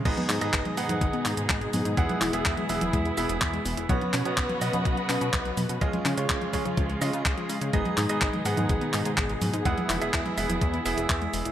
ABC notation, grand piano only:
X:1
M:4/4
L:1/16
Q:1/4=125
K:G#m
V:1 name="Grand piano"
[B,DGd]3 [B,DGd]3 [B,DGf]8- [B,DGf]2 | [B,EGf]3 [B,EGe]3 [B,EGe]4 [B,EGe]6 | [B,CFc]3 [B,CFc]3 [B,CFd]8- [B,CFd]2 | [G,C^Ed]3 [G,CEc]3 [G,CEc]4 [G,CEd]6 |
[B,DGd]3 [B,DGd]3 [B,DGf]8- [B,DGf]2 | [B,EGf]3 [B,EGe]3 [B,EGe]4 [B,EGe]6 |]